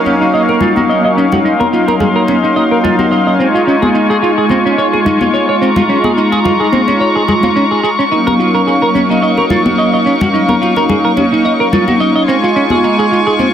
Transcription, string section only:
Already playing: D#4 A#4 C#6
1.45 C6
3.40 F4 G#5 C#6
5.62 A#5
8.12 D#4 A#4
12.28 F4 G#5 C#6

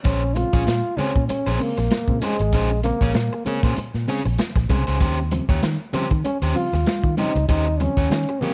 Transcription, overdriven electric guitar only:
0.04 C#4 G#4 C5
0.36 muted overdriven electric guitar stroke
0.53 C#4 G#4 C#5
0.67 muted overdriven electric guitar stroke
0.99 C#4 G#4 C5
1.16 muted overdriven electric guitar stroke
1.29 muted overdriven electric guitar stroke
1.47 C#4 G#4 C5
1.61 muted overdriven electric guitar stroke
1.78 muted overdriven electric guitar stroke
1.92 muted overdriven electric guitar stroke
2.22 C#4 G#4 C5
2.41 muted overdriven electric guitar stroke
2.54 C#4 G#4 C5
2.71 muted overdriven electric guitar stroke
2.85 muted overdriven electric guitar stroke
3.02 C#4 G#4 C#5
3.15 muted overdriven electric guitar stroke
3.33 muted overdriven electric guitar stroke
3.46 C#4 G#4 C#5
3.64 C#4 G#4 C5
3.78 muted overdriven electric guitar stroke
4.08 C#4 G#4 C#5
4.25 muted overdriven electric guitar stroke
4.39 muted overdriven electric guitar stroke
4.56 muted overdriven electric guitar stroke
4.70 C#4 G#4 C5
4.87 C#4 G#4 C5
5.00 C#4 G4 C5
5.32 muted overdriven electric guitar stroke
5.49 C#4 G4 C#5
5.63 muted overdriven electric guitar stroke
5.94 C#4 G4 C5
6.11 muted overdriven electric guitar stroke
6.25 muted overdriven electric guitar stroke
6.42 C#4 G4 C5
6.56 muted overdriven electric guitar stroke
6.74 muted overdriven electric guitar stroke
6.88 muted overdriven electric guitar stroke
7.18 C#4 G4 C5
7.36 muted overdriven electric guitar stroke
7.49 C#4 G4 C5
7.67 muted overdriven electric guitar stroke
7.80 muted overdriven electric guitar stroke
7.97 C#4 G4 C#5
8.11 muted overdriven electric guitar stroke
8.29 muted overdriven electric guitar stroke
8.43 C#4 G4 C#5

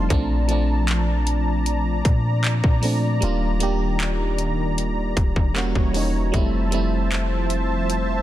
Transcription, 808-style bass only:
0.11 A#1
2.05 A#2
2.64 A#2
3.23 D#1
5.17 D1
5.36 E1
5.76 E1
6.34 F1

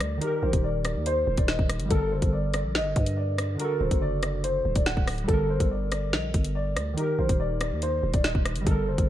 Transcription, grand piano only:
Already playing: D5
0.21 A#4
0.43 C5
0.64 D5
0.85 D5
1.06 C5
1.37 D5
1.48 D#5
1.91 A4
2.12 C5
2.33 D5
2.54 D5
2.75 D#5
3.17 D5
3.60 A#4
3.81 C5
4.02 D5
4.23 D5
4.44 C5
4.75 D5
4.86 F#5
5.28 A4
5.50 C5
5.71 D5
5.92 D5
6.13 D#5
6.55 D5
6.98 A#4
7.19 C5
7.40 D5
7.61 D5
7.83 C5
8.13 D5
8.24 D#5
8.67 A4
8.88 C5

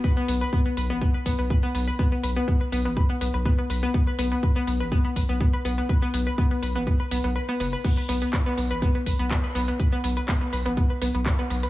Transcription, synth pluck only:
0.04 B4
0.17 B3
0.28 B3
0.41 B4
0.53 B3
0.66 B3
0.77 B4
0.90 B3
1.02 B3
1.14 B4
1.26 B3
1.39 B3
1.50 B4
1.63 B3
1.75 B3
1.88 B4
1.99 B3
2.12 B3
2.23 B4
2.36 B3
2.48 B3
2.61 B4
2.72 B3
2.85 B3
2.97 B4
3.10 B3
3.21 B3
3.34 B4
3.46 B3
3.59 B3
3.70 B4
3.83 B3
3.94 B3
4.07 B4
4.19 B3
4.32 B3
4.43 B4
4.56 B3
4.67 B3
4.80 B4
4.92 B3
5.05 B3
5.16 B4
5.29 B3
5.41 B3
5.53 B4
5.65 B3
5.78 B3
5.89 B4
6.02 B3
6.14 B3
6.27 B4
6.38 B3
6.51 B3
6.63 B4
6.75 B3
6.87 B3
7.00 B4
7.11 B3
7.24 B3
7.36 B4
7.49 B3
7.60 B3
7.73 B4
7.84 B3
7.97 B4
8.09 B3
8.22 B3
8.33 B4
8.46 B3
8.58 B3
8.71 B4
8.82 B3
8.95 B3
9.06 B4
9.19 B3
9.31 B3
9.44 B4
9.55 B3
9.68 B3
9.80 B4
9.93 B3
10.04 B3
10.17 B4
10.28 B3
10.41 B3
10.53 B4
10.66 B3
10.77 B3
10.90 B4
11.02 B3
11.15 B3
11.26 B4
11.39 B3
11.50 B3
11.63 B4

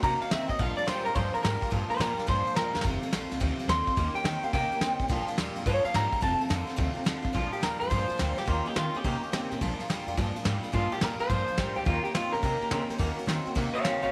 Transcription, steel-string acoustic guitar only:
0.03 D#3 A#3 C#4 F#4
0.20 A#3 C#4 F#4
0.30 D#3 A#3 C#4 F#4
0.48 A#3 C#4 F#4
0.59 A#2 F3 G#3 D4 F4
0.76 G#3 D4 F4
0.86 F3 G#3 D4 F4
1.05 G#3 D4 F4
1.15 A#2 F3 G#3 D4 F4
1.33 G#3 D4 F4
1.43 F3 G#3 D4 F4
1.61 G#3 D4 F4
1.70 A#2 F3 G#3 D4 F4
1.89 G#3 D4 F4
1.98 F3 G#3 D4 F4
2.17 G#3 D4 F4
2.26 A#2 F3 G#3 D4 F4
2.45 G#3 D4 F4
2.55 F3 G#3 D4 F4
2.73 G#3 D4 F4
2.83 F2 C3 D#3 A3 C4 F4
3.01 D#3 A3 C4 F4
3.12 D#3 A3 C4 F4
3.29 D#3 A3 C4 F4
3.40 F2 C3 D#3 A3 C4 F4
3.58 D#3 A3 C4 F4
3.68 D#3 A3 C4 F4
3.86 D#3 A3 C4 F4
3.96 D#3 A#3 C#4 G4
4.14 A#3 C#4 G4
4.24 D#3 A#3 C#4 G4
4.43 A#3 C#4 G4
4.53 D#3 A#3 C#4 G4
4.72 A#3 C#4 G4
4.82 D#3 A#3 C#4 G4
5.00 A#3 C#4 G4
5.08 A#2 F3 G#3 D4 F4
5.27 G#3 D4 F4
5.37 F3 G#3 D4 F4
5.55 G#3 D4 F4
5.66 A#2 F3 G#3 D4 F4
5.84 G#3 D4 F4
5.94 F3 G#3 D4 F4
6.11 G#3 D4 F4
6.21 F2 C3 D#3 A3 C4 F4
6.39 D#3 A3 C4 F4
6.49 D#3 A3 C4 F4
6.67 D#3 A3 C4 F4
6.76 F2 C3 D#3 A3 C4 F4
6.94 D#3 A3 C4 F4
7.04 D#3 A3 C4 F4
7.22 D#3 A3 C4 F4
7.33 A#2 F3 G#3 D4 F4
7.52 G#3 D4 F4
7.61 F3 G#3 D4 F4
7.80 G#3 D4 F4
7.90 A#2 F3 G#3 D4 F4
8.08 G#3 D4 F4
8.18 F3 G#3 D4 F4
8.36 G#3 D4 F4
8.46 D#3 A#3 C#4 G4
8.64 A#3 C#4 G4
8.74 D#3 A#3 C#4 G4
8.94 A#3 C#4 G4
9.04 D#3 A#3 C#4 G4
9.22 A#3 C#4 G4
9.32 D#3 A#3 C#4 G4
9.51 A#3 C#4 G4
9.61 A#2 F3 G#3 D4 F4
9.79 G#3 D4 F4
9.88 F3 G#3 D4 F4
10.07 G#3 D4 F4
10.17 A#2 F3 G#3 D4 F4
10.35 G#3 D4 F4
10.44 F3 G#3 D4 F4
10.63 G#3 D4 F4
10.72 A#2 F3 G#3 D4 F4
10.90 G#3 D4 F4
11.00 F3 G#3 D4 F4
11.19 G#3 D4 F4
11.29 A#2 F3 G#3 D4 F4
11.47 G#3 D4 F4
11.57 F3 G#3 D4 F4
11.74 G#3 D4 F4
11.85 D#3 A#3 C#4 G4
12.04 A#3 C#4 G4
12.14 D#3 A#3 C#4 G4
12.33 A#3 C#4 G4
12.42 D#3 A#3 C#4 G4
12.61 A#3 C#4 G4
12.71 D#3 A#3 C#4 G4
12.89 A#3 C#4 G4
12.98 D#3 A#3 C#4 F#4
13.16 A#3 C#4 F#4
13.26 D#3 A#3 C#4 F#4
13.46 A#3 C#4 F#4
13.55 D#3 A#3 C#4 F#4
13.74 A#3 C#4 F#4
13.84 D#3 A#3 C#4 F#4
14.02 A#3 C#4 F#4

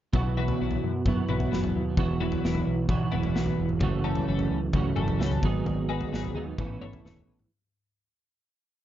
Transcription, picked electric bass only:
0.13 B1
0.61 B1
0.84 F#2
1.05 F#2
1.29 B1
1.53 F#1
1.76 D#2
1.97 E1
2.43 E1
2.67 B1
2.89 B1
3.13 E1
3.35 B1
3.59 E1
3.81 F#1
4.28 F#1
4.51 C#2
4.73 C#2
4.97 F#1
5.19 C#2
5.42 G#1
5.66 G#1
6.13 G#1
6.35 D#2
6.58 A1
6.81 A1
7.03 E1
7.27 A1

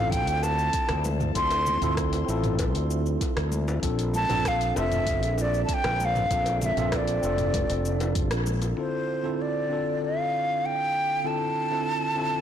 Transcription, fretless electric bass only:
Already playing: A1
0.27 D2
0.90 D2
1.36 D2
1.82 D2
2.29 A1
2.74 D2
3.37 D2
3.83 A#1
4.31 A#1
4.76 F1
5.22 A#1
5.84 A#1
6.31 A#1
6.77 A#1
7.23 F1
7.70 F1
8.31 A#1

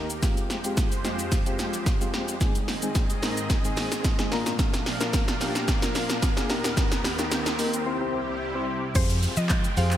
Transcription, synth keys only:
Already playing: A#3 D#4 G4 A#4
0.22 G#3 C4 F4 G4
0.64 G#3 C4 F4 G4
1.04 G#3 C4 F4 G4
1.46 G#3 C4 F4 G4
2.01 G#3 C4 F4 G4
2.41 G#3 C4 D#4 G#4
2.82 G#3 C4 D#4 G#4
3.23 G#3 C4 D#4 A#4
3.64 G#3 C4 D#4 G#4
4.19 G#3 C4 D#4 G#4
4.32 A#3 D4 F4 A#4
5.00 A#3 D4 F4 A#4
5.40 A#3 D4 F4 G4
5.82 A#3 D4 F4 A#4
6.37 A#3 D4 F4 G#4
6.50 A#3 D#4 G4 A#4
7.19 A#3 D#4 G4 A#4
7.59 A#3 D#4 G4 A#4
7.86 C4 E4 G4 C5
8.01 C4 E4 G4 C5
8.55 C4 E4 G4 C5
8.95 C4 F4 G4 G#4 C5
9.77 C4 F4 G4 G#4 C5

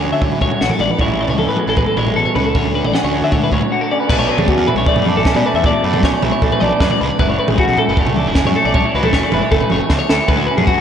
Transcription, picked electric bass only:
Already playing: D2
0.12 D3
0.41 D2
0.61 A1
0.79 A1
1.00 A1
1.27 C#2
1.47 A2
1.67 A1
1.96 A1
2.17 A1
2.35 C#2
2.55 D2
2.83 A1
3.04 D2
3.22 D3
3.52 D2
4.10 B1
4.37 D2
4.57 E2
4.75 B1
4.97 F#2
5.17 B1
5.35 B2
5.54 E2
5.84 F#2
6.03 B1
6.22 B1
6.42 B1
6.62 B1
6.80 F#2
7.01 C#2
7.19 F#1
7.49 A1
7.68 B1
7.88 F#1
8.06 C#2
8.26 F#1
8.46 F#2
8.65 B1
8.94 C#2
9.13 F#1
9.32 F#1
9.51 F#1
9.71 F#1
9.91 C#2
10.10 D2
10.28 D2
10.57 F#2

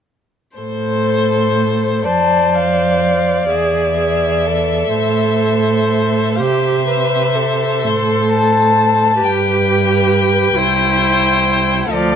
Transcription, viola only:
0.59 A4
2.05 C5
3.49 G#4
3.97 G#4
4.47 A4
6.40 G4
6.88 B4
7.35 A4
9.21 G4
10.57 E4
11.92 F3

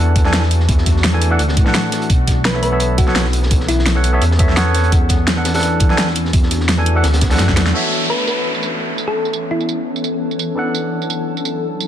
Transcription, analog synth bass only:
Already playing: E2
0.69 E2
1.39 D2
1.57 A2
2.10 B1
3.51 B1
4.22 E2
4.92 E2
6.33 E2
7.04 D2
7.39 F#2
7.57 E2

